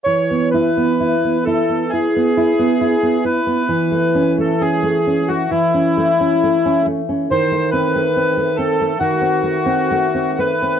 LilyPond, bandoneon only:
\new Staff \with { instrumentName = "Bandoneon" } { \time 4/4 \key e \major \tempo 4 = 67 cis''8 b'4 a'8 gis'4. b'8~ | b'8. a'16 gis'8. fis'16 e'4. r8 | bis'8 b'4 a'8 fis'4. b'8 | }